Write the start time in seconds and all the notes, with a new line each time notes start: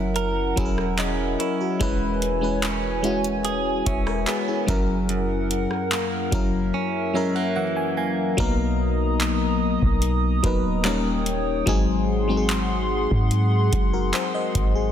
Already playing: F#1 F#3 C#4 E4 A#4 E5 F#5 G#5
0.16 A#4, closed hi-hat
0.56 E1 F#3 C#4 E4 G#4, kick, closed hi-hat
0.65 A#4
0.78 cross-stick
0.98 C#4 D#5, clap, closed hi-hat
1.40 E4 A#4 C#5, closed hi-hat
1.60 F#4 A#4
1.79 E1 E3 G#3 C#4 E4 B4 C#5 G#5, kick, closed hi-hat
2.22 closed hi-hat
2.41 G#3 C#4 E4 B4
2.63 C#4, clap, closed hi-hat
3.03 G#3 C#4 E4 F#4, closed hi-hat
3.24 closed hi-hat
3.45 G#4, closed hi-hat
3.86 E1 C#4 C#5 E5, kick, closed hi-hat
4.07 A#4 C#5, cross-stick
4.27 B3 G#4 B4, clap, closed hi-hat
4.48 E4 G#4
4.66 F#1 F#2 F#3 C#4 E4 A#4 F#5, kick, closed hi-hat
5.09 F#2, closed hi-hat
5.51 closed hi-hat
5.71 cross-stick
5.91 A#3, clap, closed hi-hat
6.31 F#1 F#3 C#4 E4 A#4 E5, kick, closed hi-hat
6.74 C#4
7.13 F#3 G#3 C#4 E4 A#4 E5
7.35 A#3 F#5
7.56 E3 F#5
7.77 G#5
7.97 A#3 G#5
8.37 B1 F#3 A#3 B3 D#4 A#4 D#5 A#5 D#6, kick, closed hi-hat
9.20 clap, closed hi-hat
9.82 B1, kick
10.02 closed hi-hat
10.43 D#1 F#3 B3 D#4 A#4 B4, kick, closed hi-hat
10.84 G3 A#3 C#4 D#4 A#4 C#5 G5, clap, closed hi-hat
11.26 closed hi-hat
11.66 G#1 F#3 G#3 C4 D#4 G#4 F#5 C6, kick, closed hi-hat
12.28 F#3 G#3 C4 D#4 F#4
12.37 G#4
12.49 clap, closed hi-hat
13.11 G#2, kick
13.31 closed hi-hat
13.73 F#1, kick, closed hi-hat
13.93 F#4 A#4
14.13 G#4 C5, clap, closed hi-hat
14.34 C5 D#5
14.55 G#1, kick, closed hi-hat
14.75 G#4